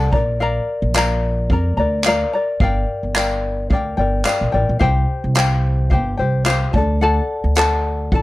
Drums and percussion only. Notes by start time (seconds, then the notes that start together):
0.13 kick
0.94 clap, tambourine
1.50 kick
2.04 clap, tambourine
2.60 kick
3.15 clap, tambourine
3.71 kick
4.25 clap, tambourine
4.81 kick
5.35 clap, tambourine
5.91 kick
6.46 clap, tambourine
6.74 kick
7.55 clap, tambourine
8.12 kick